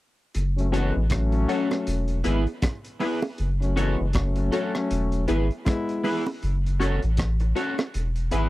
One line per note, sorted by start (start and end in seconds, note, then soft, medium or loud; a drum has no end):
0.34 0.92 F#1 loud
0.34 closed hi-hat medium
0.57 0.69 F#3 medium
0.57 0.70 A3 medium
0.57 0.69 C#4 medium
0.57 closed hi-hat soft
0.72 1.03 E3 medium
0.72 1.03 G#3 medium
0.72 1.03 B3 medium
0.72 0.90 C#4 medium
0.72 0.91 C#4 medium
0.72 0.90 F#4 medium
0.72 0.91 F#4 medium
0.72 0.91 A4 medium
0.72 0.91 C#5 medium
0.72 0.92 C#5 medium
0.72 closed hi-hat medium
0.96 1.46 A1 medium
1.10 2.21 F#3 loud
1.10 2.21 A3 loud
1.10 2.21 C#4 loud
1.10 kick medium
1.10 cross-stick loud
1.10 closed hi-hat medium
1.32 muted clean electric guitar stroke soft
1.32 closed hi-hat soft
1.48 1.66 C#4 medium
1.48 1.67 C#4 medium
1.48 1.66 F#4 medium
1.48 1.67 F#4 medium
1.48 1.67 A4 loud
1.48 1.67 A4 medium
1.48 1.67 C#5 medium
1.48 1.67 C#5 loud
1.48 closed hi-hat medium
1.71 cross-stick medium
1.71 closed hi-hat soft
1.71 high bongo medium
1.87 2.23 E1 loud
1.87 closed hi-hat loud
2.08 closed hi-hat soft
2.24 2.46 G#1 medium
2.24 2.39 G#3 medium
2.24 2.43 B3 medium
2.24 2.42 B3 medium
2.24 2.39 B3 medium
2.24 2.43 E4 medium
2.24 2.42 E4 medium
2.24 2.39 E4 medium
2.24 2.43 G#4 medium
2.24 2.42 G#4 medium
2.24 2.43 B4 medium
2.24 2.43 B4 loud
2.24 closed hi-hat medium
2.47 closed hi-hat soft
2.62 kick loud
2.62 cross-stick loud
2.62 closed hi-hat medium
2.62 high bongo medium
2.85 closed hi-hat medium
3.00 3.19 B3 medium
3.00 3.18 B3 loud
3.00 3.19 E4 medium
3.00 3.18 E4 medium
3.00 3.19 G#4 medium
3.00 3.19 B4 medium
3.00 3.19 B4 loud
3.00 open hi-hat medium
3.00 low bongo medium
3.22 high bongo medium
3.38 3.96 F#1 medium
3.38 closed hi-hat medium
3.61 3.74 F#3 medium
3.61 3.74 A3 medium
3.61 3.74 C#4 medium
3.61 closed hi-hat soft
3.76 4.07 E3 medium
3.76 4.07 G#3 medium
3.76 4.07 B3 medium
3.76 3.95 C#4 medium
3.76 3.94 C#4 medium
3.76 3.95 F#4 medium
3.76 3.94 F#4 medium
3.76 3.95 A4 medium
3.76 3.94 A4 medium
3.76 3.95 C#5 loud
3.76 closed hi-hat medium
4.01 4.50 F#1 medium
4.13 5.24 F#3 loud
4.13 5.24 A3 loud
4.13 5.24 C#4 loud
4.13 kick loud
4.13 cross-stick loud
4.13 closed hi-hat medium
4.36 muted clean electric guitar stroke soft
4.36 closed hi-hat soft
4.52 4.71 C#4 medium
4.52 4.70 C#4 medium
4.52 4.71 F#4 medium
4.52 4.70 F#4 medium
4.52 4.71 A4 medium
4.52 4.70 A4 medium
4.52 4.71 C#5 medium
4.52 4.71 C#5 loud
4.52 closed hi-hat medium
4.75 cross-stick medium
4.75 high bongo medium
4.91 5.27 E1 loud
4.91 closed hi-hat loud
5.12 closed hi-hat soft
5.28 5.50 G#1 medium
5.28 5.46 G#3 medium
5.28 5.46 B3 medium
5.28 5.47 E4 medium
5.28 5.46 E4 medium
5.28 5.47 E4 medium
5.28 5.47 G#4 medium
5.28 5.46 G#4 medium
5.28 5.47 B4 medium
5.28 5.46 B4 loud
5.28 closed hi-hat medium
5.51 closed hi-hat soft
5.66 6.23 G#3 loud
5.66 6.23 B3 medium
5.66 6.23 E4 loud
5.66 kick loud
5.66 cross-stick loud
5.66 closed hi-hat medium
5.66 high bongo medium
5.89 closed hi-hat medium
6.03 6.22 B3 medium
6.03 6.23 E4 medium
6.03 6.22 E4 medium
6.03 6.23 G#4 medium
6.03 6.22 G#4 medium
6.03 6.23 B4 loud
6.03 6.22 B4 loud
6.03 open hi-hat medium
6.03 low bongo medium
6.26 high bongo medium
6.42 7.00 F#1 loud
6.42 closed hi-hat medium
6.66 closed hi-hat soft
6.79 6.98 C#4 medium
6.79 6.99 C#4 loud
6.79 6.98 F#4 medium
6.79 6.99 F#4 medium
6.79 6.98 A4 medium
6.79 6.99 A4 loud
6.79 6.98 C#5 loud
6.79 6.99 C#5 medium
6.79 closed hi-hat medium
7.02 7.54 A1 medium
7.02 closed hi-hat soft
7.17 kick medium
7.17 cross-stick loud
7.17 closed hi-hat medium
7.40 muted clean electric guitar stroke soft
7.40 closed hi-hat soft
7.55 7.73 C#4 medium
7.55 7.74 C#4 medium
7.55 7.74 F#4 medium
7.55 7.75 F#4 medium
7.55 7.74 A4 medium
7.55 7.75 A4 loud
7.55 7.74 C#5 loud
7.55 7.75 C#5 medium
7.55 closed hi-hat medium
7.78 cross-stick medium
7.78 closed hi-hat soft
7.78 high bongo medium
7.94 8.31 E1 loud
7.94 closed hi-hat medium
8.16 closed hi-hat soft
8.31 8.49 G#1 medium
8.31 8.49 B3 medium
8.31 8.49 E4 medium
8.31 8.49 G#4 medium
8.31 8.49 B4 loud
8.31 8.49 B4 medium
8.31 closed hi-hat medium